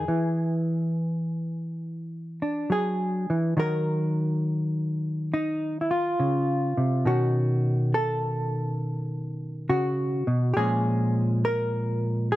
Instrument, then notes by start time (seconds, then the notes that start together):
hollow-body jazz guitar
Already playing: G#4
0.08 E3
2.42 D4
2.70 F#3 G#4
3.30 E3
3.57 D#3 F#3 A#4
5.34 D#4
5.81 E4
5.91 F4
6.20 C#3
6.77 C3
7.05 B2 D#3 C#4 F#4
7.94 A4
9.69 C#3 F#4
10.27 B2
10.54 A#2 F3 G4 G#4
10.58 G#3 C#4
11.45 A#4
12.32 G#4